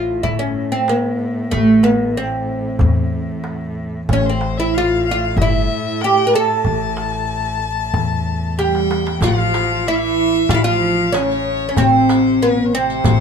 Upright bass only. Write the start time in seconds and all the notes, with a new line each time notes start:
Already playing: A1
0.25 G1
1.53 A1
2.81 E2
4.09 A1
5.37 G1
6.67 A1
7.94 E2
9.21 A1
10.49 A1
11.78 A1
13.05 A1